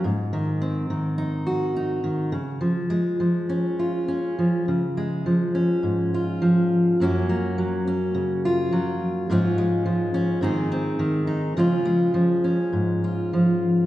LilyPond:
\new Staff \with { instrumentName = "Steel-string acoustic guitar" } { \clef bass \time 4/4 \key des \major \tempo 4 = 104 << { r4 c'4 ees'8 ges'8 ees'4 | r4 aes4 des'8 f'8 des'4 | r8 aes4 des'4 f'4. | <ges bes des' ges'>8 bes4 des'4 f'4. |
<f aes des' f'>8 aes4 des'8 <ees c' ees' aes'>8 c'4 ees'8 | <f aes des' f'>8 aes4 des'4 f'4. | } \\ { aes,8 ees4 ees2 ees8 | des8 f4 f2 f8 | des4 f4 aes,4 f4 | ges,4 ges4 des4 ges4 |
aes,4 f4 aes,4 ees4 | des4 f4 aes,4 f4 | } >> }